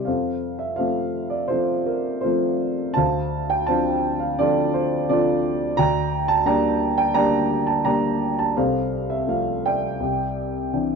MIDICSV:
0, 0, Header, 1, 2, 480
1, 0, Start_track
1, 0, Key_signature, -1, "major"
1, 0, Tempo, 722892
1, 45, Time_signature, 4, 2, 24, 8
1, 2444, Tempo, 697674
1, 5804, Tempo, 726392
1, 7384, End_track
2, 0, Start_track
2, 0, Title_t, "Grand piano"
2, 0, Program_c, 0, 0
2, 0, Control_c, 0, 64, 127
2, 31, Note_on_c, 0, 77, 60
2, 45, Note_on_c, 0, 41, 47
2, 46, Note_on_c, 0, 72, 45
2, 47, Note_on_c, 0, 69, 47
2, 53, Control_c, 0, 64, 0
2, 185, Control_c, 0, 64, 127
2, 390, Note_on_c, 0, 76, 61
2, 412, Note_off_c, 0, 77, 0
2, 505, Note_on_c, 0, 77, 69
2, 506, Note_off_c, 0, 72, 0
2, 509, Note_off_c, 0, 76, 0
2, 510, Note_off_c, 0, 69, 0
2, 516, Note_on_c, 0, 72, 46
2, 520, Note_on_c, 0, 69, 47
2, 522, Note_on_c, 0, 53, 37
2, 525, Note_on_c, 0, 57, 35
2, 530, Note_on_c, 0, 60, 39
2, 862, Note_on_c, 0, 74, 60
2, 887, Note_off_c, 0, 77, 0
2, 971, Note_off_c, 0, 72, 0
2, 981, Note_on_c, 0, 72, 74
2, 988, Note_off_c, 0, 69, 0
2, 990, Note_off_c, 0, 53, 0
2, 992, Note_off_c, 0, 57, 0
2, 994, Note_off_c, 0, 60, 0
2, 998, Note_on_c, 0, 65, 49
2, 998, Note_on_c, 0, 69, 50
2, 999, Note_off_c, 0, 74, 0
2, 1003, Note_on_c, 0, 53, 41
2, 1012, Note_on_c, 0, 60, 47
2, 1237, Note_on_c, 0, 70, 57
2, 1244, Note_off_c, 0, 72, 0
2, 1467, Note_off_c, 0, 70, 0
2, 1467, Note_on_c, 0, 72, 70
2, 1474, Note_off_c, 0, 53, 0
2, 1475, Note_off_c, 0, 69, 0
2, 1477, Note_off_c, 0, 65, 0
2, 1479, Note_off_c, 0, 60, 0
2, 1485, Note_on_c, 0, 69, 43
2, 1487, Note_on_c, 0, 65, 48
2, 1492, Note_on_c, 0, 53, 42
2, 1493, Note_on_c, 0, 57, 37
2, 1494, Note_on_c, 0, 60, 44
2, 1813, Note_off_c, 0, 72, 0
2, 1940, Note_off_c, 0, 65, 0
2, 1940, Note_off_c, 0, 69, 0
2, 1943, Note_off_c, 0, 41, 0
2, 1950, Note_on_c, 0, 81, 85
2, 1955, Note_off_c, 0, 53, 0
2, 1956, Note_off_c, 0, 57, 0
2, 1956, Note_off_c, 0, 60, 0
2, 1964, Note_on_c, 0, 72, 60
2, 1966, Note_on_c, 0, 77, 64
2, 1968, Note_on_c, 0, 38, 53
2, 1977, Control_c, 0, 64, 0
2, 2100, Control_c, 0, 64, 127
2, 2322, Note_on_c, 0, 79, 77
2, 2326, Note_off_c, 0, 81, 0
2, 2433, Note_on_c, 0, 81, 84
2, 2434, Note_off_c, 0, 72, 0
2, 2437, Note_off_c, 0, 77, 0
2, 2444, Note_on_c, 0, 53, 42
2, 2444, Note_on_c, 0, 72, 63
2, 2445, Note_off_c, 0, 79, 0
2, 2447, Note_on_c, 0, 60, 36
2, 2447, Note_on_c, 0, 77, 56
2, 2450, Note_on_c, 0, 62, 43
2, 2778, Note_off_c, 0, 81, 0
2, 2786, Note_off_c, 0, 77, 0
2, 2796, Note_on_c, 0, 77, 67
2, 2914, Note_off_c, 0, 77, 0
2, 2915, Note_off_c, 0, 53, 0
2, 2917, Note_off_c, 0, 60, 0
2, 2919, Note_off_c, 0, 62, 0
2, 2930, Note_on_c, 0, 60, 41
2, 2930, Note_on_c, 0, 74, 88
2, 2931, Note_on_c, 0, 53, 47
2, 2934, Note_on_c, 0, 62, 50
2, 2942, Note_on_c, 0, 65, 57
2, 2943, Note_on_c, 0, 69, 61
2, 3154, Note_off_c, 0, 74, 0
2, 3161, Note_off_c, 0, 72, 0
2, 3172, Note_on_c, 0, 72, 72
2, 3395, Note_off_c, 0, 53, 0
2, 3395, Note_off_c, 0, 60, 0
2, 3397, Note_off_c, 0, 62, 0
2, 3415, Note_on_c, 0, 53, 42
2, 3416, Note_off_c, 0, 69, 0
2, 3416, Note_on_c, 0, 60, 43
2, 3416, Note_on_c, 0, 74, 86
2, 3417, Note_off_c, 0, 72, 0
2, 3419, Note_on_c, 0, 62, 49
2, 3421, Note_off_c, 0, 65, 0
2, 3427, Note_on_c, 0, 69, 60
2, 3431, Note_on_c, 0, 65, 61
2, 3743, Note_off_c, 0, 74, 0
2, 3853, Note_off_c, 0, 38, 0
2, 3862, Note_off_c, 0, 69, 0
2, 3864, Note_off_c, 0, 65, 0
2, 3870, Note_off_c, 0, 53, 0
2, 3870, Note_off_c, 0, 60, 0
2, 3872, Note_off_c, 0, 62, 0
2, 3882, Note_on_c, 0, 82, 105
2, 3888, Note_on_c, 0, 38, 57
2, 3890, Note_on_c, 0, 74, 68
2, 3891, Control_c, 0, 64, 0
2, 3893, Note_on_c, 0, 79, 72
2, 4028, Control_c, 0, 64, 127
2, 4211, Note_off_c, 0, 82, 0
2, 4234, Note_on_c, 0, 81, 94
2, 4346, Note_off_c, 0, 81, 0
2, 4348, Note_off_c, 0, 79, 0
2, 4353, Note_on_c, 0, 55, 47
2, 4354, Note_off_c, 0, 74, 0
2, 4355, Note_on_c, 0, 58, 42
2, 4357, Note_on_c, 0, 62, 49
2, 4358, Note_on_c, 0, 82, 86
2, 4359, Note_on_c, 0, 79, 63
2, 4365, Note_on_c, 0, 74, 64
2, 4701, Note_off_c, 0, 79, 0
2, 4711, Note_on_c, 0, 79, 84
2, 4728, Note_off_c, 0, 82, 0
2, 4820, Note_off_c, 0, 79, 0
2, 4821, Note_off_c, 0, 55, 0
2, 4822, Note_off_c, 0, 58, 0
2, 4823, Note_off_c, 0, 62, 0
2, 4823, Note_off_c, 0, 74, 0
2, 4826, Note_on_c, 0, 82, 92
2, 4830, Note_on_c, 0, 79, 62
2, 4832, Note_on_c, 0, 55, 47
2, 4834, Note_on_c, 0, 58, 43
2, 4834, Note_on_c, 0, 74, 67
2, 4838, Note_on_c, 0, 62, 55
2, 5187, Note_on_c, 0, 81, 75
2, 5203, Note_off_c, 0, 82, 0
2, 5300, Note_off_c, 0, 55, 0
2, 5301, Note_off_c, 0, 58, 0
2, 5302, Note_off_c, 0, 79, 0
2, 5303, Note_off_c, 0, 62, 0
2, 5307, Note_off_c, 0, 74, 0
2, 5310, Note_on_c, 0, 82, 86
2, 5312, Note_on_c, 0, 79, 56
2, 5315, Note_on_c, 0, 58, 38
2, 5316, Note_off_c, 0, 81, 0
2, 5316, Note_on_c, 0, 55, 43
2, 5317, Note_on_c, 0, 62, 43
2, 5317, Note_on_c, 0, 74, 57
2, 5683, Note_on_c, 0, 81, 73
2, 5688, Note_off_c, 0, 82, 0
2, 5773, Note_off_c, 0, 79, 0
2, 5775, Note_off_c, 0, 74, 0
2, 5779, Note_off_c, 0, 38, 0
2, 5787, Note_off_c, 0, 55, 0
2, 5787, Note_off_c, 0, 58, 0
2, 5788, Note_off_c, 0, 62, 0
2, 5804, Note_on_c, 0, 69, 60
2, 5806, Note_on_c, 0, 77, 76
2, 5807, Note_off_c, 0, 81, 0
2, 5807, Note_on_c, 0, 72, 58
2, 5808, Note_on_c, 0, 36, 57
2, 5811, Control_c, 0, 64, 0
2, 5913, Control_c, 0, 64, 127
2, 6156, Note_on_c, 0, 76, 72
2, 6167, Note_off_c, 0, 77, 0
2, 6271, Note_on_c, 0, 53, 36
2, 6273, Note_on_c, 0, 57, 35
2, 6276, Note_off_c, 0, 76, 0
2, 6278, Note_on_c, 0, 60, 40
2, 6283, Note_on_c, 0, 77, 70
2, 6497, Note_off_c, 0, 77, 0
2, 6525, Note_on_c, 0, 79, 78
2, 6527, Note_on_c, 0, 74, 50
2, 6528, Note_on_c, 0, 76, 47
2, 6722, Note_off_c, 0, 69, 0
2, 6724, Note_off_c, 0, 36, 0
2, 6724, Note_off_c, 0, 72, 0
2, 6733, Note_off_c, 0, 53, 0
2, 6734, Note_off_c, 0, 57, 0
2, 6736, Note_off_c, 0, 60, 0
2, 6753, Note_on_c, 0, 36, 58
2, 6755, Control_c, 0, 64, 0
2, 6888, Control_c, 0, 64, 127
2, 7229, Note_off_c, 0, 79, 0
2, 7237, Note_on_c, 0, 52, 36
2, 7238, Note_on_c, 0, 60, 30
2, 7239, Note_on_c, 0, 79, 51
2, 7243, Note_on_c, 0, 62, 37
2, 7354, Note_off_c, 0, 79, 0
2, 7358, Note_off_c, 0, 76, 0
2, 7384, Note_off_c, 0, 36, 0
2, 7384, Note_off_c, 0, 52, 0
2, 7384, Note_off_c, 0, 60, 0
2, 7384, Note_off_c, 0, 62, 0
2, 7384, Note_off_c, 0, 74, 0
2, 7384, End_track
0, 0, End_of_file